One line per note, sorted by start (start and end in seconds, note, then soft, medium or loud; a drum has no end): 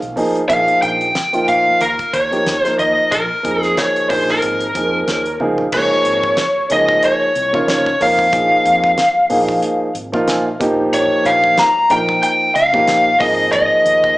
0.00 0.15 B1 medium
0.00 0.14 F5 medium
0.00 closed hi-hat soft
0.16 0.40 F3 medium
0.16 0.40 A#3 medium
0.16 0.40 D#4 medium
0.16 0.41 G#4 loud
0.16 0.47 D#5 medium
0.16 open hi-hat medium
0.35 muted fretless electric bass stroke soft
0.35 closed hi-hat soft
0.48 0.66 A#1 medium
0.48 1.06 F3 medium
0.48 1.06 A#3 medium
0.48 1.06 D#4 medium
0.48 1.06 G#4 medium
0.48 0.82 F5 loud
0.48 kick loud
0.48 closed hi-hat medium
0.68 closed hi-hat soft
0.82 1.11 A#1 medium
0.82 1.48 G5 loud
0.82 closed hi-hat medium
1.01 closed hi-hat soft
1.15 snare loud
1.15 closed hi-hat medium
1.33 1.80 F3 medium
1.33 1.81 A#3 medium
1.33 1.81 D#4 medium
1.33 1.81 F4 medium
1.33 closed hi-hat soft
1.48 1.64 A#2 medium
1.48 1.79 F5 medium
1.48 closed hi-hat medium
1.67 muted fretless electric bass stroke soft
1.81 1.97 D#2 medium
1.81 2.15 A#4 medium
1.81 closed hi-hat medium
1.99 kick medium
1.99 closed hi-hat soft
2.13 2.29 D#2 medium
2.13 2.61 C#5 medium
2.13 kick medium
2.13 closed hi-hat medium
2.31 2.52 F3 medium
2.31 2.53 A#3 medium
2.31 2.53 D#4 medium
2.31 2.53 G4 medium
2.31 closed hi-hat soft
2.46 2.62 D#2 medium
2.46 snare loud
2.46 closed hi-hat medium
2.61 3.11 F3 medium
2.61 3.12 A#3 medium
2.61 3.12 D#4 medium
2.61 3.12 A#4 medium
2.61 2.79 C5 medium
2.61 muted fretless electric bass stroke soft
2.61 snare soft
2.61 closed hi-hat soft
2.79 2.95 D#2 medium
2.79 3.13 D#5 medium
2.79 closed hi-hat soft
3.11 3.28 A#1 medium
3.11 3.62 A#4 medium
3.11 kick loud
3.11 closed hi-hat medium
3.43 3.73 F2 medium
3.43 4.07 F3 medium
3.43 4.07 A#3 medium
3.43 4.08 D#4 medium
3.43 4.09 G#4 medium
3.43 kick medium
3.43 closed hi-hat medium
3.62 3.79 G#4 medium
3.62 snare soft
3.62 closed hi-hat soft
3.77 4.10 C#5 medium
3.77 snare medium
3.77 closed hi-hat medium
3.96 closed hi-hat soft
4.09 4.38 A#1 medium
4.09 4.63 F3 medium
4.09 4.63 A#3 medium
4.09 4.64 D#4 medium
4.09 4.64 G#4 medium
4.09 4.29 C5 medium
4.09 kick medium
4.09 open hi-hat medium
4.28 5.38 A#4 medium
4.28 snare soft
4.42 4.71 G#1 medium
4.42 closed hi-hat medium
4.60 closed hi-hat soft
4.75 5.04 F2 medium
4.75 5.20 F3 medium
4.75 5.21 A#3 medium
4.75 5.21 D#4 medium
4.75 5.21 G#4 medium
4.75 kick medium
4.75 closed hi-hat medium
5.08 5.37 D#2 medium
5.08 5.38 C#5 medium
5.08 snare medium
5.08 closed hi-hat medium
5.26 closed hi-hat soft
5.40 5.70 C#2 medium
5.40 5.64 F3 medium
5.40 5.64 A#3 medium
5.40 5.64 D#4 medium
5.40 5.64 G#4 medium
5.40 5.71 F5 medium
5.40 high tom soft
5.58 floor tom medium
5.72 5.89 C#2 medium
5.72 6.39 F3 medium
5.72 6.39 A#3 medium
5.72 6.39 D#4 medium
5.72 6.39 G#4 medium
5.72 6.72 C#5 medium
5.72 kick loud
5.72 crash medium
6.05 6.34 G#1 medium
6.05 closed hi-hat medium
6.23 kick medium
6.37 snare loud
6.37 closed hi-hat medium
6.70 6.99 C#2 medium
6.70 7.26 F3 medium
6.70 7.26 A#3 medium
6.70 7.27 D#4 medium
6.70 7.27 G#4 medium
6.70 7.05 D#5 medium
6.70 closed hi-hat medium
6.89 kick medium
7.03 7.69 C#5 medium
7.03 closed hi-hat medium
7.35 7.52 C2 medium
7.35 closed hi-hat medium
7.53 7.95 C#3 medium
7.53 7.86 F3 medium
7.53 7.86 A#3 medium
7.53 7.87 D#4 medium
7.53 7.87 F4 medium
7.53 kick medium
7.68 8.00 C#5 medium
7.68 snare loud
7.68 closed hi-hat medium
7.86 kick medium
8.00 8.29 F2 medium
8.00 8.24 F3 medium
8.00 8.24 A#3 medium
8.00 8.24 D#4 medium
8.00 8.25 A#4 medium
8.00 9.93 F5 medium
8.00 open hi-hat medium
8.19 kick medium
8.32 8.49 A#1 medium
8.32 8.98 F3 medium
8.32 8.99 A#3 medium
8.32 8.99 D#4 medium
8.32 8.99 G#4 medium
8.32 kick loud
8.32 closed hi-hat medium
8.65 8.94 F2 medium
8.65 closed hi-hat medium
8.84 kick medium
8.98 snare loud
8.98 closed hi-hat medium
9.29 9.59 A#1 medium
9.29 9.86 F3 medium
9.29 9.86 A#3 medium
9.29 9.87 D#4 medium
9.29 9.87 G#4 medium
9.29 open hi-hat medium
9.49 kick medium
9.62 closed hi-hat medium
9.95 10.11 G#1 medium
9.95 closed hi-hat medium
10.12 10.55 A#2 medium
10.12 10.46 F3 medium
10.12 10.46 A#3 medium
10.12 10.47 D#4 medium
10.12 10.47 F4 loud
10.12 kick medium
10.28 10.45 G#5 medium
10.28 snare loud
10.28 closed hi-hat medium
10.46 10.60 F5 medium
10.60 10.89 A#1 medium
10.60 11.65 F3 medium
10.60 11.65 A#3 medium
10.60 11.66 D#4 medium
10.60 11.66 G4 medium
10.60 10.91 D#5 medium
10.60 kick medium
10.60 closed hi-hat medium
10.93 11.09 A#1 medium
10.93 11.27 C#5 medium
10.93 closed hi-hat medium
11.25 11.54 A#1 medium
11.25 11.59 F5 medium
11.25 closed hi-hat medium
11.44 kick medium
11.58 11.89 A#5 medium
11.58 snare loud
11.58 closed hi-hat medium
11.90 12.19 A#1 medium
11.90 12.46 F3 medium
11.90 12.46 A#3 medium
11.90 12.47 D#4 medium
11.90 12.47 A#4 medium
11.90 12.21 G5 loud
11.90 closed hi-hat medium
12.09 kick medium
12.23 12.55 G5 medium
12.23 closed hi-hat medium
12.55 12.72 C#2 medium
12.55 13.17 F5 medium
12.55 closed hi-hat medium
12.73 13.15 A#2 medium
12.73 13.06 F3 medium
12.73 13.06 A#3 medium
12.73 13.07 D#4 medium
12.73 13.07 G4 medium
12.73 kick medium
12.87 snare loud
12.87 closed hi-hat medium
13.19 13.49 G#1 medium
13.19 14.18 F3 medium
13.19 14.18 A#3 medium
13.19 14.18 D#4 medium
13.19 14.18 G#4 medium
13.19 13.51 D#5 medium
13.19 kick medium
13.19 open hi-hat medium
13.53 13.69 G#1 medium
13.53 14.18 D#5 medium
13.53 closed hi-hat medium
13.85 14.14 D#2 medium
13.85 closed hi-hat medium
14.04 kick medium